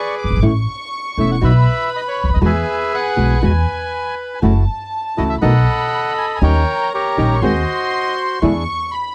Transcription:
0.00 0.40 G#4 soft
0.00 0.40 B4 soft
0.00 0.15 D5 medium
0.00 0.18 C#6 medium
0.19 0.42 D6 medium
0.24 0.30 F#1 soft
0.30 0.36 G1 soft
0.37 0.42 G#1 medium
0.42 0.64 A1 medium
0.42 0.51 E3 medium
0.42 0.51 A3 medium
0.42 0.52 C#4 medium
0.42 0.52 E4 medium
0.42 1.42 C#6 medium
1.17 1.38 E1 soft
1.17 1.34 E3 soft
1.17 1.35 A3 soft
1.17 1.35 C#4 medium
1.17 1.35 E4 medium
1.17 1.30 E5 medium
1.31 1.37 F#5 medium
1.40 1.63 B1 medium
1.40 1.50 B2 medium
1.40 1.51 F#3 medium
1.40 1.51 B3 medium
1.40 1.51 D#4 medium
1.40 1.51 F#4 medium
1.40 2.39 B4 medium
1.40 2.42 B5 medium
1.45 1.90 E5 medium
1.96 2.01 D#5 medium
2.08 2.30 C#5 medium
2.24 2.29 C#2 soft
2.29 2.35 D2 soft
2.34 2.41 D#2 medium
2.34 2.39 D#5 medium
2.41 2.63 E2 medium
2.41 2.51 B2 medium
2.41 2.51 E3 medium
2.41 2.51 G#3 medium
2.41 2.51 B3 medium
2.41 2.51 F#4 medium
2.41 3.40 G#4 medium
2.41 4.18 G#5 medium
2.45 2.92 B4 medium
2.45 2.95 E5 medium
2.94 3.42 B4 medium
2.94 3.45 F#5 medium
3.16 3.38 B1 soft
3.16 3.34 B2 soft
3.16 3.34 E3 medium
3.16 3.34 G#3 soft
3.16 3.34 B3 medium
3.16 3.34 F#4 medium
3.41 3.63 E2 medium
3.41 3.51 B2 medium
3.41 3.51 E3 medium
3.41 3.51 G#3 medium
3.41 3.51 B3 medium
3.41 3.51 F#4 medium
3.41 4.39 B4 medium
3.41 4.15 G#5 medium
4.35 4.42 G#5 soft
4.42 4.64 F#1 medium
4.42 4.51 C#3 medium
4.42 4.52 E3 medium
4.42 4.52 A3 medium
4.42 4.64 A3 medium
4.42 4.52 C#4 medium
4.42 4.64 E4 medium
4.42 4.52 F#4 medium
4.42 4.64 F#4 medium
4.42 5.43 A5 medium
5.17 5.39 C#2 soft
5.17 5.34 C#3 soft
5.17 5.35 E3 soft
5.17 5.39 A3 soft
5.17 5.35 A3 medium
5.17 5.35 C#4 soft
5.17 5.39 E4 soft
5.17 5.39 F#4 soft
5.17 5.35 F#4 medium
5.17 5.23 D#5 medium
5.30 5.35 E5 medium
5.41 5.64 B1 medium
5.41 5.51 B2 medium
5.41 5.51 D#3 medium
5.41 5.52 A3 medium
5.41 5.51 B3 medium
5.41 5.64 B3 medium
5.41 5.64 D#4 medium
5.41 5.52 F#4 medium
5.41 5.64 A4 medium
5.41 6.39 A4 medium
5.41 6.38 D#5 medium
5.41 6.13 F#5 medium
5.41 6.39 B5 medium
6.18 6.26 G#5 medium
6.36 6.43 G#5 medium
6.41 6.63 D#2 medium
6.41 6.51 D#3 medium
6.41 6.51 G3 medium
6.41 6.51 C#4 medium
6.41 6.63 C#4 medium
6.41 6.64 D#4 medium
6.41 6.63 G4 medium
6.41 6.52 G4 medium
6.41 6.93 A#4 medium
6.41 6.93 C#5 medium
6.41 6.90 G5 medium
6.41 7.35 A#5 medium
6.94 7.40 G4 medium
6.94 7.40 A#4 medium
6.94 7.45 C#5 medium
7.17 7.39 A#1 medium
7.17 7.34 D#3 soft
7.17 7.35 G3 medium
7.17 7.38 C#4 soft
7.17 7.35 C#4 soft
7.17 7.39 D#4 soft
7.17 7.39 G4 soft
7.17 7.35 G4 medium
7.36 7.43 C#6 medium
7.41 7.63 D#2 medium
7.41 7.51 D#3 medium
7.41 7.51 G#3 medium
7.41 7.63 C4 medium
7.41 7.51 C4 medium
7.41 7.63 F#4 medium
7.41 7.51 F#4 medium
7.41 8.39 F#4 soft
7.41 7.64 G#4 medium
7.41 8.39 C5 soft
7.41 8.15 D#5 medium
7.41 8.43 C6 medium
8.42 8.63 E2 medium
8.42 8.51 B2 medium
8.42 8.51 D3 medium
8.42 8.51 G#3 medium
8.42 8.51 B3 medium
8.42 8.64 D4 medium
8.42 8.51 E4 medium
8.42 8.64 E4 medium
8.42 8.64 G#4 medium
8.42 8.92 C#6 medium
8.92 9.15 B5 medium

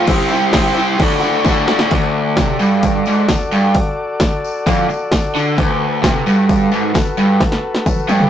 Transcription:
0.06 0.50 C3 loud
0.06 0.51 G3 loud
0.06 0.32 C4 loud
0.06 0.98 E4 medium
0.06 0.31 E4 loud
0.06 0.98 G4 medium
0.06 0.30 G4 loud
0.06 0.98 C5 medium
0.06 kick loud
0.06 tambourine medium
0.06 crash medium
0.11 0.28 C5 loud
0.29 0.54 E4 medium
0.29 0.54 G4 medium
0.29 0.55 C5 medium
0.29 tambourine medium
0.34 0.52 C4 medium
0.42 tambourine soft
0.51 0.97 C3 loud
0.51 0.98 G3 medium
0.51 0.78 C4 loud
0.51 0.76 E4 medium
0.51 0.75 G4 loud
0.51 kick loud
0.51 snare loud
0.51 tambourine medium
0.51 crash medium
0.56 0.73 C5 loud
0.65 tambourine soft
0.74 0.99 E4 medium
0.74 0.98 G4 medium
0.74 0.97 C5 medium
0.74 tambourine medium
0.79 0.99 C4 medium
0.96 1.24 D2 loud
0.96 1.22 A2 loud
0.96 1.88 F#4 medium
0.96 1.89 A4 medium
0.96 1.90 D5 medium
0.96 kick loud
0.96 tambourine soft
0.96 crash medium
1.00 1.22 D3 loud
1.00 1.21 A3 loud
1.00 1.19 F#4 loud
1.11 tambourine soft
1.20 1.43 A2 medium
1.20 1.45 D3 medium
1.20 1.47 A3 medium
1.20 1.48 F#4 loud
1.20 tambourine medium
1.25 1.70 D2 medium
1.34 tambourine soft
1.44 1.89 A2 medium
1.44 1.71 D3 medium
1.44 1.69 A3 medium
1.44 kick loud
1.44 snare medium
1.44 tambourine loud
1.49 1.66 F#4 medium
1.58 tambourine soft
1.68 1.91 A3 medium
1.68 1.90 F#4 medium
1.68 snare loud
1.68 tambourine soft
1.72 1.92 D3 medium
1.79 snare medium
1.79 tambourine soft
1.90 2.37 D2 loud
1.90 5.53 F#4 medium
1.90 5.54 A4 medium
1.90 5.55 D5 medium
1.90 kick loud
1.90 open hi-hat medium
2.37 2.59 C3 loud
2.37 kick loud
2.37 snare loud
2.37 open hi-hat medium
2.37 tambourine loud
2.59 3.05 G2 loud
2.59 tambourine medium
2.83 kick loud
2.83 open hi-hat medium
2.83 tambourine medium
3.06 3.28 G#2 loud
3.06 tambourine medium
3.28 3.47 D2 medium
3.28 kick loud
3.28 snare loud
3.28 open hi-hat medium
3.28 tambourine loud
3.52 3.74 G2 loud
3.52 tambourine medium
3.75 kick loud
3.75 open hi-hat medium
4.20 kick loud
4.20 snare loud
4.20 open hi-hat medium
4.20 tambourine loud
4.44 tambourine medium
4.67 4.89 F2 loud
4.67 kick loud
4.67 open hi-hat medium
4.67 tambourine medium
4.89 muted overdriven electric guitar stroke medium
4.89 tambourine medium
5.12 kick loud
5.12 snare loud
5.12 open hi-hat medium
5.12 tambourine loud
5.36 5.58 D3 loud
5.36 tambourine medium
5.57 6.03 D2 loud
5.57 8.30 F#4 medium
5.57 8.30 A4 medium
5.57 8.30 B4 medium
5.57 kick loud
5.57 open hi-hat medium
6.03 6.26 C3 loud
6.03 kick loud
6.03 snare loud
6.03 open hi-hat medium
6.03 tambourine loud
6.27 6.72 G2 loud
6.27 tambourine medium
6.49 kick loud
6.49 open hi-hat medium
6.49 tambourine medium
6.71 6.94 G#2 loud
6.71 tambourine medium
6.94 7.13 D2 medium
6.94 kick loud
6.94 snare loud
6.94 open hi-hat medium
6.94 tambourine medium
7.17 7.40 G2 loud
7.17 tambourine medium
7.40 kick loud
7.40 snare medium
7.40 open hi-hat medium
7.40 tambourine soft
7.52 snare medium
7.75 snare medium
7.86 kick loud
7.86 open hi-hat medium
7.86 high tom medium
7.86 tambourine medium
8.08 8.30 G2 loud
8.08 high tom medium
8.08 tambourine medium
8.20 mid tom medium

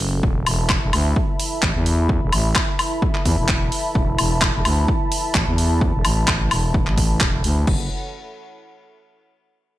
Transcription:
0.00 0.22 F#1 loud
0.00 0.19 C#4 medium
0.00 0.19 F#4 medium
0.00 0.19 A4 medium
0.00 open hi-hat loud
0.23 0.45 E1 loud
0.23 7.63 E4 medium
0.23 7.63 E5 medium
0.23 7.63 A5 medium
0.23 7.63 B5 medium
0.23 kick loud
0.46 0.80 E1 loud
0.46 open hi-hat loud
0.46 high woodblock medium
0.69 kick loud
0.69 clap loud
0.69 high woodblock medium
0.82 0.91 E1 loud
0.93 1.15 D2 loud
0.93 open hi-hat loud
0.93 high woodblock medium
1.16 kick loud
1.40 open hi-hat loud
1.62 1.74 A1 medium
1.62 kick loud
1.62 clap loud
1.76 2.20 E2 loud
1.86 open hi-hat loud
2.09 kick loud
2.22 2.31 E1 loud
2.33 2.54 A1 loud
2.33 open hi-hat loud
2.33 high woodblock medium
2.55 kick loud
2.55 clap loud
2.55 high woodblock medium
2.79 open hi-hat loud
2.79 high woodblock medium
3.02 kick loud
3.15 clap soft
3.25 3.36 E2 loud
3.25 kick medium
3.25 open hi-hat loud
3.38 3.70 E1 medium
3.48 kick loud
3.48 clap loud
3.72 open hi-hat loud
3.95 4.17 E1 loud
3.95 kick loud
4.18 4.53 E1 loud
4.18 open hi-hat loud
4.18 high woodblock medium
4.41 kick loud
4.41 clap loud
4.41 high woodblock medium
4.55 4.63 E1 loud
4.65 4.87 D2 medium
4.65 open hi-hat loud
4.65 high woodblock medium
4.88 kick loud
5.12 open hi-hat loud
5.35 5.46 A1 loud
5.35 kick loud
5.35 clap loud
5.48 5.92 E2 loud
5.58 open hi-hat loud
5.81 kick loud
5.94 6.03 E1 loud
6.05 6.26 A1 loud
6.05 open hi-hat loud
6.05 high woodblock medium
6.27 6.49 A1 loud
6.27 kick loud
6.27 clap loud
6.27 high woodblock medium
6.51 6.85 E1 loud
6.51 open hi-hat loud
6.51 high woodblock medium
6.74 kick loud
6.87 7.19 A1 loud
6.87 clap soft
6.98 kick medium
6.98 open hi-hat loud
7.20 7.42 E1 loud
7.20 kick loud
7.20 clap loud
7.44 7.66 D2 medium
7.44 open hi-hat loud
7.67 7.89 F#1 loud
7.67 7.89 A4 medium
7.67 7.89 C#5 medium
7.67 7.89 F#5 medium
7.67 kick loud
7.67 crash medium

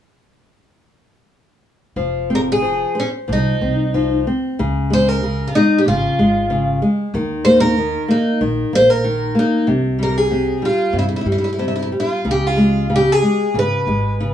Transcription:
1.96 2.82 F1 medium
1.96 2.61 F3 soft
2.30 2.62 C4 soft
2.35 2.40 A#4 medium
2.52 3.00 G#4 medium
2.62 2.94 F3 soft
2.95 3.27 C5 soft
3.00 3.08 C#4 medium
3.28 3.50 C2 medium
3.28 3.60 F3 soft
3.33 4.24 D#4 medium
3.61 4.24 C2 medium
3.61 3.93 C4 soft
3.94 4.25 F3 soft
4.27 4.58 C4 soft
4.59 5.42 C#2 medium
4.59 5.22 C#3 medium
4.90 5.21 G#3 soft
4.90 5.09 C5 medium
5.09 5.49 A#4 medium
5.23 5.53 C#3 soft
5.48 5.54 F4 medium
5.55 5.86 G#3 soft
5.55 5.80 D#4 medium
5.78 5.85 G4 medium
5.86 6.07 G#1 medium
5.86 6.18 C#3 soft
5.86 6.78 F4 medium
6.19 6.80 G#1 medium
6.19 6.49 G#3 soft
6.50 6.80 C#3 medium
6.82 7.12 G#3 soft
7.14 7.96 D#2 medium
7.14 7.77 D#3 medium
7.45 7.75 A#3 medium
7.45 7.60 C5 medium
7.60 8.09 A#4 medium
7.78 8.08 D#3 soft
8.08 8.39 A#3 soft
8.08 8.39 D#4 medium
8.41 8.61 A#1 medium
8.41 8.72 D#3 soft
8.73 9.35 A#1 medium
8.73 9.03 A#3 soft
8.73 8.90 C5 medium
8.90 9.37 A#4 medium
9.04 9.35 D#3 soft
9.35 9.66 A#3 soft
9.39 9.67 D#4 medium
9.67 10.50 C2 medium
9.67 10.29 C3 medium
9.99 10.29 G3 soft
10.03 10.18 A#4 medium
10.18 10.64 G#4 medium
10.31 10.61 C3 soft
10.62 10.93 G3 soft
10.62 10.96 F4 medium
10.93 11.15 G2 medium
10.93 11.25 C3 soft
10.99 11.04 E4 medium
11.09 11.12 E4 soft
11.16 11.20 E4 soft
11.21 11.26 E4 soft
11.25 11.90 G2 medium
11.25 11.58 G3 soft
11.32 11.35 E4 soft
11.38 11.42 E4 soft
11.44 11.49 E4 soft
11.53 11.57 E4 soft
11.59 11.91 C3 soft
11.59 11.65 E4 soft
11.68 11.73 E4 soft
11.76 11.80 E4 soft
11.83 11.88 E4 soft
11.92 12.24 G3 soft
12.00 12.30 F4 medium
12.25 13.09 C#2 medium
12.25 12.88 C#3 soft
12.31 12.47 G4 medium
12.47 12.94 F4 medium
12.57 12.88 G#3 soft
12.90 13.21 C#3 soft
12.96 13.12 G4 medium
13.12 13.58 G#4 medium
13.22 13.53 G#3 soft
13.54 13.75 G#1 medium
13.54 13.86 C#3 soft
13.59 14.34 B4 medium
13.87 14.34 G#1 medium
13.87 14.18 G#3 soft
14.20 14.34 C#3 medium

